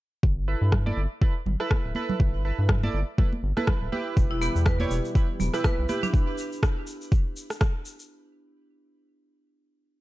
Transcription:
0.23 G1, kick
0.48 E4 A4 B4
0.61 G2
0.72 kick, cross-stick, low conga
0.86 E4 A4 D5, high conga
0.97 G1
1.22 E4 A4 B4, kick
1.46 G1, low conga
1.60 E4 A4 B4, cross-stick
1.71 kick, cross-stick, high conga
1.85 D1
1.95 E4 A4 B4, high conga
2.09 low conga
2.20 G1, kick
2.45 E4 A4 B4
2.59 G2
2.69 kick, cross-stick, low conga
2.83 E4 A4 D5, high conga
2.94 G1
3.18 E4 A4 B4, kick, high conga, low conga
3.33 high conga
3.43 G1
3.57 E4 A4 B4, cross-stick, high conga
3.67 kick, cross-stick, low conga
3.81 D1
3.92 E4 G4 B4, high conga
4.17 E1 B2 E3 G3 E4 G4, kick, shaker
4.31 E4
4.41 B3 E4 G4 B4, shaker
4.56 E2, shaker
4.66 B4, kick, cross-stick, low conga, shaker
4.80 E4 G4 C#5 D5, high conga
4.91 E1, shaker
5.05 shaker
5.15 E4 G4 B4, kick, shaker
5.40 E1 B3, low conga, shaker
5.54 E4 G4 B4, cross-stick, shaker
5.64 B4, kick, cross-stick, high conga, shaker
5.78 B1
5.89 E4 G4 B4, high conga, shaker
6.03 D4, low conga, shaker
6.14 kick, shaker
6.38 shaker
6.52 shaker
6.63 kick, cross-stick, shaker
6.87 shaker
7.01 shaker
7.12 kick, shaker
7.36 shaker
7.50 cross-stick, shaker
7.61 kick, cross-stick, shaker
7.85 shaker
7.99 shaker

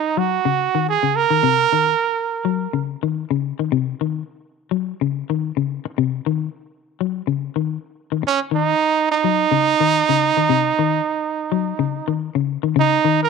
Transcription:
Already playing: D#4
0.17 F#3 F#4
0.45 C#3
0.75 D#3
0.89 G#4
1.03 C#3
1.16 A#4
1.30 D#3
1.43 C3
1.73 D#3
2.45 F#3
2.73 C#3
3.03 D#3
3.31 C#3
3.59 D#3
3.72 C3
4.01 D#3
4.71 F#3
5.01 C#3
5.30 D#3
5.57 C#3
5.85 muted clean electric guitar stroke
5.98 C3
6.26 D#3
7.01 F#3
7.27 C#3
7.56 D#3
8.12 D#3
8.23 muted clean electric guitar stroke
8.27 C#4
8.51 D#3 D#4
9.11 D#4
9.24 F#3
9.51 C#3
9.80 D#3
10.09 C#3
10.37 D#3
10.49 C3
10.79 D#3
11.52 F#3
11.79 C#3
12.08 D#3
12.35 C#3
12.63 D#3
12.76 C#3
12.80 D#4
13.05 D#3
13.23 A#4

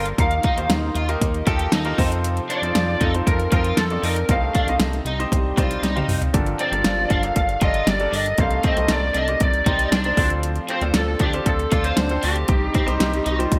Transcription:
Already playing: G1 G2 D3 A#3 D4 G4 A4 A#4 C5
0.06 closed hi-hat
0.17 D#2 A#2 D#3 A#3 D#4 F4 G4 A#4 F5, kick, closed hi-hat
0.31 closed hi-hat
0.43 D#4, kick, closed hi-hat
0.57 D#2 A#3 D#4 F4 G4 C5, closed hi-hat
0.69 D#2, snare, closed hi-hat
0.95 D#2 F4, closed hi-hat
1.09 A#3 D#4 F4 G4 A#4, closed hi-hat
1.21 D#2, kick, closed hi-hat
1.34 closed hi-hat
1.47 D#2 A#3 D#4 F4 G4 A4, kick, closed hi-hat
1.59 closed hi-hat
1.72 D#2 D#4, snare, closed hi-hat
1.85 A#3 D#4 F4 G4 A#4, closed hi-hat
1.98 F2 C3 F3 C4 D#4 F4 A4 C5, kick, open hi-hat
2.12 closed hi-hat
2.24 closed hi-hat
2.37 closed hi-hat
2.50 D4 D5, closed hi-hat
2.62 F2 C4 D#4 F4 A4 C5, closed hi-hat
2.75 F2, snare, closed hi-hat
3.01 F2 D#4 A4, kick, closed hi-hat
3.14 C4 D#4 F4 A4 C5, closed hi-hat
3.27 F2 A#4, kick, closed hi-hat
3.40 closed hi-hat
3.52 F2 C4 D#4 F4 A4 A#4 C5, kick, closed hi-hat
3.64 closed hi-hat
3.77 F2 A4, snare, closed hi-hat
3.90 C4 D#4 F4 A4 D5, closed hi-hat
4.03 F2 D#4 A#4, open hi-hat
4.16 closed hi-hat
4.29 C2 G2 A3 C4 D#4 G4 A4 C5 D#5 F5, kick, closed hi-hat
4.55 D4, kick, closed hi-hat
4.67 C2 C4 D#4 G4 C5 D#5, closed hi-hat
4.80 C2, snare, closed hi-hat
4.93 closed hi-hat
5.05 C2 D#4, closed hi-hat
5.19 C4 D#4 G4 C5 D#5, closed hi-hat
5.32 C2 G3 G4, kick, closed hi-hat
5.57 C2 C4 D#4 F4 G4 C5 D5, kick, closed hi-hat
5.71 closed hi-hat
5.82 C2 D#4, snare, closed hi-hat
5.96 C4 D#4 G4 C5 F5, closed hi-hat, high tom
6.08 C2, mid tom, open hi-hat
6.22 closed hi-hat, floor tom
6.33 G1 G2 D3 F3 D4 F4 G4 A4 A#4 D5, kick, closed hi-hat
6.46 closed hi-hat
6.59 C4 D5, closed hi-hat
6.72 G1 D4 G4 A4 A#4 F5, closed hi-hat
6.84 G1, snare, closed hi-hat
7.10 G1 D4 F5, kick, closed hi-hat
7.23 D4 G4 A4 A#4 F5, closed hi-hat
7.36 G1 F5, kick, closed hi-hat
7.49 closed hi-hat
7.61 G1 D4 F4 G4 A4 A#4 D5 D#5, kick, closed hi-hat
7.74 closed hi-hat
7.87 G1 G3 G4 D5, snare, closed hi-hat
8.00 D4 G4 A4 A#4 D5, closed hi-hat
8.12 G1 D4 D#5, open hi-hat
8.26 closed hi-hat
8.38 C2 G2 A3 A#3 C4 D#4 G4 A4 C5 F5, kick, closed hi-hat
8.51 closed hi-hat
8.63 C4 D#5, kick, closed hi-hat
8.77 C2 A#3 C4 D#4 G4 C5, closed hi-hat
8.88 C2 D5, snare, closed hi-hat
9.14 C2 D4 D#5, closed hi-hat
9.28 C4 D#4 G4 A#4 D5, closed hi-hat
9.40 C2 D5, kick, closed hi-hat
9.54 closed hi-hat
9.66 C2 G3 C4 D#4 G4 A#4 C5, kick, closed hi-hat
9.79 closed hi-hat
9.91 C2 D4 D5, snare, closed hi-hat
10.04 C4 D#4 G4 A#4 C5, closed hi-hat
10.17 D2 A2 F3 C4 D4 F4 A4 C5, kick, open hi-hat
10.30 closed hi-hat
10.43 closed hi-hat
10.56 closed hi-hat
10.69 C4 C5, closed hi-hat
10.81 D2 C4 D4 F4 A4 D5, closed hi-hat
10.94 D2 A4, snare, closed hi-hat
11.19 D2 D4 G4, kick, closed hi-hat
11.33 C4 D4 F4 A4 C5, closed hi-hat
11.46 D2 A4, kick, closed hi-hat
11.59 closed hi-hat
11.72 D2 C4 D4 F4 A4 D5, kick, closed hi-hat
11.84 C5, closed hi-hat
11.97 D2 D3 D4, snare, closed hi-hat
12.09 C4 D4 F4 A4 C5, closed hi-hat
12.23 D2 D4 G4, open hi-hat
12.36 closed hi-hat
12.48 C2 G2 D#3 G3 C4 D#4 G4 C5, kick, closed hi-hat
12.74 C4, kick, closed hi-hat
12.86 C2 G3 C4 D#4 G4 C5, closed hi-hat
13.00 C2, snare, closed hi-hat
13.13 closed hi-hat
13.26 C2 D#4, closed hi-hat
13.39 G3 C4 D#4 F4 G4 C5, closed hi-hat
13.52 C2, kick, closed hi-hat

